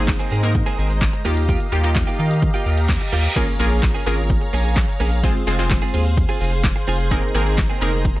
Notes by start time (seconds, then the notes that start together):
Already playing: G#1 G#3 A#3 C4 D#4 G#4 C5 D#5 A#5
0.07 kick, snare, clap, shaker
0.19 A#3 C4 G#4, closed hi-hat, shaker
0.31 G#2 A#3 C4 G#4, shaker
0.43 A#3 C4 D#4 A#4, muted clean electric guitar stroke, closed hi-hat, shaker
0.55 muted clean electric guitar stroke, kick, shaker
0.66 A#3 C4 G#4, closed hi-hat, shaker
0.78 G#1 A#3 C4 G#4, shaker
0.90 muted clean electric guitar stroke, closed hi-hat, shaker
1.01 kick, snare, clap, shaker
1.13 muted clean electric guitar stroke, closed hi-hat, shaker
1.25 D#2 A#3 D#4 F4 G4 D#5 F5, shaker
1.37 muted clean electric guitar stroke, closed hi-hat, shaker
1.48 A#3 F4 G4, kick, shaker
1.60 muted clean electric guitar stroke, closed hi-hat, shaker
1.72 D#2 A#3 D#4 F4 G4, shaker
1.84 A#3 D#4 F4 G4, closed hi-hat, shaker
1.95 kick, snare, clap, shaker
2.07 A#3 F4 G4, closed hi-hat, shaker
2.19 D#3 A#3 F4 G4, shaker
2.31 muted clean electric guitar stroke, closed hi-hat, shaker
2.42 muted clean electric guitar stroke, kick, reverse cymbal, shaker
2.54 A#3 F4 G4, closed hi-hat, shaker
2.66 D#2 A#3 F4 G4, shaker
2.77 muted clean electric guitar stroke, closed hi-hat, shaker
2.88 kick, snare, clap, shaker
3.01 muted clean electric guitar stroke, closed hi-hat, shaker
3.12 D#2 A#3 F4 G4, shaker
3.24 closed hi-hat, shaker
3.36 A#3 C#4 F4 G#4 A#4 C#5 F5 A#5, kick, closed hi-hat, crash, impact, shaker
3.48 muted clean electric guitar stroke, shaker
3.59 A#1 A#3 C#4 F4 G#4 A#4, open hi-hat, shaker
3.71 A#3 C#4 G#4, shaker
3.82 muted clean electric guitar stroke, kick, snare, clap, closed hi-hat, shaker
3.94 A#3 C#4 G#4, shaker
4.06 G#1 A#3 C#4 F4 G#4 A#4, open hi-hat, shaker
4.18 muted clean electric guitar stroke, shaker
4.30 muted clean electric guitar stroke, kick, closed hi-hat, shaker
4.42 muted clean electric guitar stroke, shaker
4.53 A#1 A#3 C#4 G#4, open hi-hat, shaker
4.65 A#3 C#4 G#4, shaker
4.76 kick, snare, clap, closed hi-hat, shaker
4.88 muted clean electric guitar stroke, shaker
5.00 A#1 A#3 C#4 G#4, open hi-hat, shaker
5.12 muted clean electric guitar stroke, shaker
5.23 G#3 C4 F4 G#4 C5, kick, closed hi-hat, shaker
5.35 muted clean electric guitar stroke, shaker
5.47 F1 G#3 C4 F4 G#4 C5, open hi-hat, shaker
5.58 G#3 C4 F4 G#4 C5, shaker
5.70 kick, snare, clap, closed hi-hat, shaker
5.82 C4 F4 G#4, shaker
5.94 D#2 C4 F4 G#4, open hi-hat, shaker
6.06 muted clean electric guitar stroke, shaker
6.17 muted clean electric guitar stroke, kick, closed hi-hat, shaker
6.29 C4 F4 G#4, shaker
6.41 F1 C4 F4 G#4, open hi-hat, shaker
6.52 muted clean electric guitar stroke, shaker
6.63 kick, snare, clap, closed hi-hat, shaker
6.76 muted clean electric guitar stroke, shaker
6.87 F1 C4 F4 G#4, open hi-hat, shaker
6.99 muted clean electric guitar stroke, shaker
7.11 A#3 C4 D#4 G#4 A#4 D#5, kick, closed hi-hat, shaker
7.23 muted clean electric guitar stroke, shaker
7.34 G#1 A#3 C4 D#4 G#4 A#4, open hi-hat, shaker
7.46 A#3 C4 G#4, shaker
7.57 kick, snare, clap, closed hi-hat, shaker
7.70 A#3 C4 G#4, shaker
7.81 F1 A#3 C4 D#4 G#4 A#4, open hi-hat, shaker
7.93 muted clean electric guitar stroke, shaker
8.05 kick, closed hi-hat, shaker
8.17 muted clean electric guitar stroke, shaker